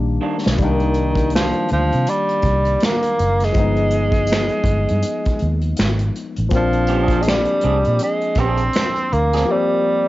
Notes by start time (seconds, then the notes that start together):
Already playing: A#1 D#3 G3 A#3 D4
0.21 D#3 A#3 D4
0.46 B1, snare
0.57 C2 D3 G3, kick, closed hi-hat
0.61 D#3 A#3 D4
0.80 closed hi-hat
0.94 closed hi-hat
1.15 kick, closed hi-hat
1.30 closed hi-hat
1.35 F3, finger snap, snare
1.52 closed hi-hat
1.68 D2 F3, closed hi-hat
1.92 C3, closed hi-hat
2.07 G3, closed hi-hat
2.29 closed hi-hat
2.42 C2, kick, closed hi-hat
2.65 closed hi-hat
2.80 finger snap, snare, closed hi-hat
2.84 A#3
3.02 closed hi-hat
3.19 F#1, closed hi-hat
3.40 snare, closed hi-hat
3.44 G#3
3.52 G1 F3 G#3, kick, closed hi-hat
3.57 B3 D#4
3.76 closed hi-hat
3.90 closed hi-hat
4.12 kick, closed hi-hat
4.27 closed hi-hat
4.32 finger snap, snare
4.49 closed hi-hat
4.64 G1, kick, closed hi-hat
4.88 G2, closed hi-hat
5.02 closed hi-hat
5.25 kick, closed hi-hat
5.39 D#2, closed hi-hat
5.61 closed hi-hat
5.77 G#1, finger snap, snare, closed hi-hat
5.99 closed hi-hat
6.16 closed hi-hat
6.36 A1, closed hi-hat
6.49 A#1 F3 A#3, kick, closed hi-hat
6.54 F3 C4 D4
6.73 closed hi-hat
6.87 B3 C#4 G4, closed hi-hat
7.02 C4 D4 G#4
7.08 kick, closed hi-hat
7.22 G#3, closed hi-hat
7.28 G3, finger snap, snare
7.45 closed hi-hat
7.61 C2 C4 D4, closed hi-hat
7.65 G#4
7.85 A#2, closed hi-hat
7.99 G#3, muted clean electric guitar stroke, closed hi-hat
8.21 closed hi-hat
8.35 A#1 C4 D4, kick, closed hi-hat
8.39 C4 G#4
8.57 closed hi-hat
8.73 finger snap, snare, closed hi-hat
8.96 closed hi-hat
9.13 D2 A#3, closed hi-hat
9.33 C4 D4 G#4, snare, closed hi-hat
9.46 F3 G4
9.50 G3 A#3 C4